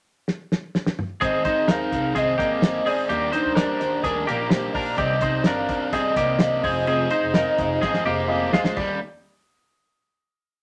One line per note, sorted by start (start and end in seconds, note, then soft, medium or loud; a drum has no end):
0.28 snare medium
0.52 snare medium
0.75 snare medium
0.86 snare medium
0.99 mid tom medium
1.21 1.62 G#1 medium
1.21 1.45 G#2 medium
1.21 1.45 D#3 medium
1.21 1.44 G#3 medium
1.21 1.44 C4 medium
1.21 1.42 D#4 medium
1.21 1.43 D#4 medium
1.21 1.42 G#4 medium
1.21 1.43 G#4 medium
1.21 1.42 C5 medium
1.21 1.72 D#5 loud
1.21 kick loud
1.21 closed hi-hat medium
1.44 1.67 G#3 soft
1.44 1.68 C4 soft
1.44 1.68 D#4 medium
1.44 1.65 D#4 medium
1.44 1.68 G#4 medium
1.44 1.65 G#4 medium
1.44 1.68 C5 medium
1.44 kick loud
1.44 closed hi-hat medium
1.68 1.88 D#2 medium
1.68 1.92 G#3 medium
1.68 1.92 C4 medium
1.68 1.88 D#4 medium
1.68 1.92 D#4 medium
1.68 1.89 G#4 medium
1.68 1.91 G#4 medium
1.68 2.12 A#4 medium
1.68 1.89 C5 loud
1.68 2.19 F5 medium
1.68 snare medium
1.68 closed hi-hat medium
1.91 2.32 C2 medium
1.91 2.14 G#3 soft
1.91 2.14 C4 soft
1.91 2.12 D#4 medium
1.91 2.15 D#4 soft
1.91 2.12 G#4 medium
1.91 2.15 G#4 soft
1.91 2.12 A#4 medium
1.91 kick medium
1.91 closed hi-hat medium
2.14 2.39 G#2 medium
2.14 2.39 D#3 medium
2.14 2.39 G#3 medium
2.14 2.38 C4 medium
2.14 2.35 D#4 medium
2.14 2.38 D#4 medium
2.14 2.35 G#4 medium
2.14 2.37 G#4 medium
2.14 2.35 C5 medium
2.14 2.63 D#5 loud
2.14 kick medium
2.14 closed hi-hat medium
2.38 2.79 G#1 medium
2.38 2.61 G#3 soft
2.38 2.83 A#3 medium
2.38 2.62 C4 soft
2.38 2.58 D#4 medium
2.38 2.62 D#4 soft
2.38 2.83 G4 medium
2.38 2.62 G#4 medium
2.38 2.59 G#4 medium
2.38 2.59 D5 medium
2.38 kick medium
2.38 closed hi-hat medium
2.62 2.86 G#3 medium
2.62 2.86 C4 medium
2.62 2.82 D#4 medium
2.62 2.86 D#4 medium
2.62 2.83 G#4 medium
2.62 2.86 G#4 medium
2.62 2.82 C5 medium
2.62 2.89 D#5 loud
2.62 snare loud
2.62 closed hi-hat loud
2.85 3.10 G#3 soft
2.85 3.10 C4 soft
2.85 3.06 D#4 medium
2.85 3.10 D#4 medium
2.85 3.06 G#4 medium
2.85 3.10 G#4 soft
2.85 3.06 D5 medium
2.85 3.34 D5 medium
2.85 open hi-hat medium
3.09 3.39 D#2 loud
3.09 3.33 D#3 medium
3.09 3.33 G3 medium
3.09 3.33 A#3 medium
3.09 3.33 D4 medium
3.09 3.29 D#4 medium
3.09 3.29 G4 medium
3.09 3.32 G4 medium
3.09 3.32 A#4 medium
3.09 3.30 D5 medium
3.09 closed hi-hat medium
3.32 3.56 A#3 soft
3.32 3.56 D4 soft
3.32 3.56 D#4 medium
3.32 3.53 D#4 medium
3.32 3.53 G4 medium
3.32 3.57 A#4 soft
3.32 3.54 A#4 medium
3.32 3.55 C5 medium
3.32 4.06 C5 medium
3.32 closed hi-hat medium
3.45 3.65 D2 medium
3.55 3.80 G3 medium
3.55 3.80 A#3 medium
3.55 3.81 D4 medium
3.55 3.76 D#4 medium
3.55 3.77 G4 medium
3.55 3.80 A#4 medium
3.55 3.77 D5 loud
3.55 snare medium
3.55 closed hi-hat medium
3.79 4.00 D#2 loud
3.79 4.05 A#3 soft
3.79 4.05 D4 soft
3.79 4.00 D#4 medium
3.79 4.00 G4 medium
3.79 4.04 A#4 medium
3.79 4.00 D5 medium
3.79 closed hi-hat medium
4.01 4.24 D2 medium
4.01 4.28 D#3 medium
4.01 4.23 D#4 medium
4.01 4.23 G4 medium
4.01 4.27 G#4 medium
4.01 4.28 A#4 medium
4.01 4.23 D5 medium
4.01 kick medium
4.01 closed hi-hat medium
4.06 4.28 G3 medium
4.06 4.28 A#3 medium
4.06 4.27 D4 medium
4.06 4.26 A#4 medium
4.25 4.68 A#1 medium
4.25 4.51 D4 soft
4.25 4.46 D#4 medium
4.25 4.47 G4 medium
4.25 4.72 G4 medium
4.25 4.51 A#4 medium
4.25 4.39 A#4 medium
4.25 4.47 D5 medium
4.25 closed hi-hat medium
4.30 4.51 A#3 soft
4.48 4.75 G3 medium
4.48 4.70 D#4 medium
4.48 4.70 G4 medium
4.48 4.84 G4 medium
4.48 4.70 C5 loud
4.48 snare loud
4.48 closed hi-hat loud
4.52 4.75 A#3 medium
4.52 4.75 D4 medium
4.52 4.73 A#4 medium
4.72 4.95 A#1 medium
4.72 4.97 A#3 soft
4.72 4.97 D4 soft
4.72 4.94 D#4 medium
4.72 4.94 G4 medium
4.72 4.97 A#4 soft
4.72 4.94 D5 medium
4.72 kick loud
4.72 open hi-hat medium
4.96 5.38 C2 loud
4.96 5.21 C3 medium
4.96 5.21 G3 medium
4.96 5.21 C4 medium
4.96 5.17 D#4 medium
4.96 5.21 D#4 medium
4.96 5.21 G4 medium
4.96 5.18 C5 medium
4.96 5.20 D5 medium
4.96 5.18 D5 loud
4.96 5.47 D#5 loud
4.96 kick loud
4.96 closed hi-hat medium
5.19 5.44 C4 soft
5.19 5.41 D#4 medium
5.19 5.45 D#4 soft
5.19 5.46 G4 soft
5.19 5.42 C5 medium
5.19 5.46 C5 medium
5.19 5.42 D5 medium
5.19 5.45 D5 medium
5.19 kick loud
5.19 closed hi-hat medium
5.44 5.65 G1 medium
5.44 5.69 C4 medium
5.44 5.91 D4 medium
5.44 5.65 D#4 medium
5.44 5.69 D#4 medium
5.44 5.68 G4 medium
5.44 5.90 A#4 medium
5.44 5.65 C5 medium
5.44 5.66 D5 loud
5.44 5.68 D5 medium
5.44 5.95 F5 loud
5.44 snare medium
5.44 closed hi-hat medium
5.68 6.09 D#2 medium
5.68 5.93 C4 soft
5.68 5.89 D#4 medium
5.68 5.93 D#4 medium
5.68 5.93 G4 medium
5.68 5.89 C5 medium
5.68 5.89 D5 medium
5.68 5.93 D5 medium
5.68 kick medium
5.68 closed hi-hat medium
5.92 6.17 C3 medium
5.92 6.17 G3 medium
5.92 6.17 C4 medium
5.92 6.13 D#4 medium
5.92 6.17 D#4 medium
5.92 6.17 G4 medium
5.92 6.17 G#4 medium
5.92 6.13 C5 medium
5.92 6.13 D5 medium
5.92 6.16 D5 medium
5.92 6.39 D#5 medium
5.92 kick medium
5.92 closed hi-hat medium
6.15 6.57 C2 medium
6.15 6.62 A#3 medium
6.15 6.36 D#4 medium
6.15 6.41 G4 soft
6.15 6.36 C5 medium
6.15 6.36 D5 medium
6.15 6.40 D5 medium
6.15 kick medium
6.15 closed hi-hat medium
6.19 6.40 C4 soft
6.19 6.41 D#4 medium
6.38 6.64 C4 medium
6.38 6.59 D#4 medium
6.38 6.59 C5 medium
6.38 6.84 D#5 loud
6.38 6.60 F5 medium
6.38 snare loud
6.38 closed hi-hat medium
6.42 6.65 D#4 medium
6.42 6.64 G4 medium
6.42 6.64 D5 medium
6.62 7.04 F1 loud
6.62 6.87 C4 medium
6.62 7.03 F4 medium
6.62 7.03 G#4 medium
6.62 6.87 G#4 soft
6.62 6.88 C5 medium
6.62 7.04 D#5 medium
6.62 kick loud
6.62 open hi-hat medium
6.66 6.87 D#4 soft
6.87 7.11 F3 medium
6.87 7.11 C4 medium
6.87 7.11 D#4 medium
6.87 7.10 G#4 medium
6.87 7.09 C5 medium
6.87 8.25 D#5 loud
6.87 closed hi-hat medium
7.09 7.34 D#4 soft
7.09 7.30 F4 medium
7.09 7.31 G#4 medium
7.09 7.35 G#4 soft
7.09 7.34 C5 medium
7.09 7.31 D#5 medium
7.09 closed hi-hat medium
7.23 7.43 F1 medium
7.33 7.58 C4 medium
7.33 7.59 D#4 medium
7.33 7.54 F4 medium
7.33 7.55 G#4 medium
7.33 7.58 G#4 medium
7.33 7.79 A#4 medium
7.33 7.57 C5 medium
7.33 7.55 D#5 loud
7.33 snare medium
7.33 closed hi-hat medium
7.57 7.79 F1 loud
7.57 7.82 D#4 medium
7.57 7.78 F4 medium
7.57 7.79 G#4 medium
7.57 7.82 G#4 medium
7.57 7.82 C5 medium
7.57 7.79 D#5 loud
7.57 kick loud
7.57 closed hi-hat medium
7.81 8.02 G#1 medium
7.81 8.06 F3 medium
7.81 8.06 C4 medium
7.81 8.06 D#4 medium
7.81 8.02 F4 medium
7.81 8.02 G#4 medium
7.81 8.05 G#4 medium
7.81 8.04 C5 medium
7.81 8.02 D#5 medium
7.81 kick medium
7.81 snare medium
7.94 snare soft
8.05 8.46 F1 medium
8.05 8.51 A#3 medium
8.05 8.29 D#4 soft
8.05 8.26 F4 medium
8.05 8.50 G4 medium
8.05 8.26 G#4 medium
8.05 8.30 G#4 medium
8.05 8.29 C5 medium
8.05 8.26 D#5 loud
8.28 8.54 C4 medium
8.28 8.54 D#4 medium
8.28 8.49 F4 loud
8.28 8.50 G#4 loud
8.28 8.54 G#4 medium
8.28 8.53 C5 medium
8.28 8.50 D#5 loud
8.52 8.74 D2 medium
8.52 8.78 G#3 medium
8.52 8.77 D#4 medium
8.52 8.73 F4 medium
8.52 8.77 F4 medium
8.52 8.73 G#4 medium
8.52 8.78 G#4 medium
8.52 8.78 C5 medium
8.52 8.74 D#5 medium
8.52 snare loud
8.64 snare medium
8.76 8.99 D#2 loud
8.76 8.96 D#3 medium
8.76 8.97 G3 medium
8.76 8.97 A#3 medium
8.76 8.99 D#4 medium
8.76 8.97 D#4 medium
8.76 8.99 G4 medium
8.76 8.97 G4 medium
8.76 8.99 D5 medium
8.76 8.98 D5 medium
8.76 kick loud
8.76 crash medium